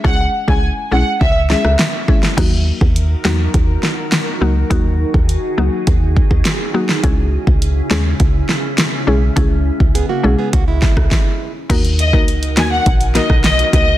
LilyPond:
<<
  \new Staff \with { instrumentName = "Violin section" } { \time 4/4 \key ees \phrygian \tempo 4 = 103 ges''16 r8 aes''16 r8 ges''16 r16 fes''16 r16 fes''16 r4 r16 | r1 | r1 | r1 |
r1 | r8 ees''16 r8. aes''16 ges''16 r8 ees''16 r16 ees''16 r16 ees''16 r16 | }
  \new Staff \with { instrumentName = "Ambient pad" } { \time 4/4 \key ees \phrygian << { r1 | bes'1 | aes'1~ | aes'1~ |
aes'2. r4 | bes'1 | } \\ { r1 | <ees ees' ges'>1~ | <ees ees' ges'>1 | <des des' fes'>1~ |
<des des' fes'>2. r4 | <ees ees' ges'>1 | } >> }
  \new Staff \with { instrumentName = "Synth pluck" } { \time 4/4 \key ees \phrygian <aes des' fes' aes'>16 r8 <aes des' fes' aes'>16 r8 <aes des' fes' aes'>16 r8. <aes des' fes' aes'>16 r8. <aes des' fes' aes'>16 r16 | <ges bes ees' ges'>4. <ges bes ees' ges'>8 r4. <ges bes ees' ges'>16 r16 | <ges bes ees' ges'>4. <ges bes ees' ges'>8 r4. <ges bes ees' ges'>16 r16 | <aes des' fes' aes'>4. <aes des' fes' aes'>8 r4. <aes des' fes' aes'>16 r16 |
<aes des' fes' aes'>4. <aes des' fes' aes'>8 r2 | <bes ees' ges' bes'>16 r8 <bes ees' ges' bes'>16 r8 <bes ees' ges' bes'>16 r8. <bes ees' ges' bes'>16 r8. <bes ees' ges' bes'>16 r16 | }
  \new Staff \with { instrumentName = "Nylon-string guitar" } { \time 4/4 \key ees \phrygian r1 | r1 | r1 | r1 |
r4 <ces' aes'>16 <bes ges'>8 <ces' aes'>16 <bes ges'>16 <aes fes'>4. r16 | r1 | }
  \new Staff \with { instrumentName = "FM bass" } { \clef bass \time 4/4 \key ees \phrygian des,8 r16 des,8 r16 ces,16 r16 des,8. des,16 r4 | ees,8. ees,8. fes,8 ees,8 r4 des,8 | ees,8. ees,8 r16 des,16 r16 ees,8. ees,16 r4 | des,8. des,8. ees,8 des,8 r4 ces,8 |
des,8. des,8 r16 ces,16 r16 des,8. des,16 r4 | ees,8. des,8. ees,8 bes,,8. ces,8. des,8 | }
  \new DrumStaff \with { instrumentName = "Drums" } \drummode { \time 4/4 bd8. bd16 r4 bd8 sn16 ss16 sn8 bd16 sn16 | <cymc hh bd>8. bd16 hh8 sn8 <hh bd>8 sn8 <hh sn>4 | <hh bd>8. bd16 hh4 <hh bd>8 bd16 bd16 <hh sn>8. sn16 | <hh bd>8. bd16 hh8 sn8 <hh bd>8 sn8 <hh sn>4 |
<hh bd>8. bd16 hh4 <hh bd>8 <bd sn>16 <bd ss>16 <bd sn>4 | <cymc hh bd>16 hh16 hh16 bd16 hh16 hh16 <hh sn>8 <hh bd>16 hh16 <hh sn>16 <bd ss>16 <hh sn>16 hh16 <hh bd>8 | }
>>